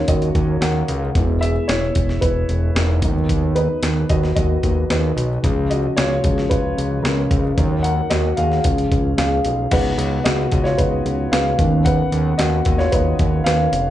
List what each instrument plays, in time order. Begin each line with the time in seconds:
Already playing: upright piano F#3 A#3 C#4 D#4 F4 A#4 C#5
0.08 analog synth bass D#2, upright piano F#4 D#5, kick, closed hi-hat
0.22 closed hi-hat
0.35 analog synth bass D#2, kick, closed hi-hat
0.61 analog synth bass D#2, upright piano A#4 F#5, snare, closed hi-hat
0.88 analog synth bass C#2, closed hi-hat
1.15 analog synth bass E1, upright piano G#3 B3 E4, kick, closed hi-hat
1.41 upright piano G#4 E5, closed hi-hat
1.68 analog synth bass E1, upright piano E4 C#5, snare, closed hi-hat
1.95 analog synth bass E1, kick, closed hi-hat
2.09 snare
2.21 analog synth bass E1, upright piano E4 B4, kick, closed hi-hat
2.49 analog synth bass E1, closed hi-hat
2.75 analog synth bass E1, upright piano D#4 A#4, snare, closed hi-hat
3.02 analog synth bass D#2, upright piano F#3 B3 D#4, kick, closed hi-hat
3.29 kick, closed hi-hat
3.55 upright piano D#4 B4, closed hi-hat
3.83 analog synth bass D#2, snare, closed hi-hat
4.09 analog synth bass D#2, upright piano F#4 D#5, kick, closed hi-hat
4.23 snare
4.36 analog synth bass D#2, upright piano F#4 D#5, kick, closed hi-hat
4.63 analog synth bass D#2, kick, closed hi-hat
4.90 analog synth bass D#2, upright piano D#4 B4, snare, closed hi-hat
5.16 analog synth bass B1, closed hi-hat
5.43 analog synth bass C#2, upright piano F3 G#3 C#4, kick, closed hi-hat
5.70 upright piano F#4 D#5, closed hi-hat
5.97 analog synth bass C#2, upright piano F4 C#5, snare, closed hi-hat
6.23 analog synth bass C#2, upright piano F3 G#3 C#4, kick, closed hi-hat
6.38 snare
6.50 analog synth bass C#2, upright piano F4 B4, kick, closed hi-hat
6.78 analog synth bass C#2, closed hi-hat
7.03 analog synth bass C#2, upright piano C#4 A#4, snare, closed hi-hat
7.31 analog synth bass C#2, kick, closed hi-hat
7.57 analog synth bass D#2, upright piano F#3 A#3 D#4, kick, closed hi-hat
7.83 upright piano A#4 F#5, closed hi-hat
8.10 analog synth bass D#2, upright piano F#4 D#5, snare, closed hi-hat
8.37 analog synth bass D#2, upright piano G#4 F5, closed hi-hat
8.52 snare
8.64 analog synth bass C#2, upright piano F3 G#3 C#4, kick, closed hi-hat
8.78 closed hi-hat
8.92 analog synth bass C#2, kick, closed hi-hat
9.18 analog synth bass C#2, upright piano G#4 F5, snare, closed hi-hat
9.45 analog synth bass B1, closed hi-hat
9.71 analog synth bass C#2, upright piano F#3 B3 D#4 B4 F#5, kick, closed hi-hat, crash
9.98 analog synth bass C#2, closed hi-hat
10.24 analog synth bass C#2, upright piano F#4 D#5, snare, closed hi-hat
10.52 analog synth bass C#2, kick, closed hi-hat
10.64 upright piano F4 C#5, snare
10.78 analog synth bass C#2, upright piano F#3 B3 D#4 F#4 B4, kick, closed hi-hat
11.05 analog synth bass C#2, closed hi-hat
11.32 analog synth bass C#2, upright piano B4 F5, snare, closed hi-hat
11.59 analog synth bass D#2, upright piano D#3 B3 C#4, kick, closed hi-hat
11.85 upright piano B4 F#5, kick, closed hi-hat
12.12 analog synth bass D#2, closed hi-hat
12.38 analog synth bass D#2, upright piano F#4 D#5, snare, closed hi-hat
12.65 analog synth bass D#2, kick, closed hi-hat
12.78 upright piano F4 C#5, snare
12.92 analog synth bass D#2, upright piano D#4 B4, kick, closed hi-hat
13.19 analog synth bass D#2, kick, closed hi-hat
13.44 analog synth bass D#2, upright piano B4 F5, snare, closed hi-hat
13.72 analog synth bass F1, closed hi-hat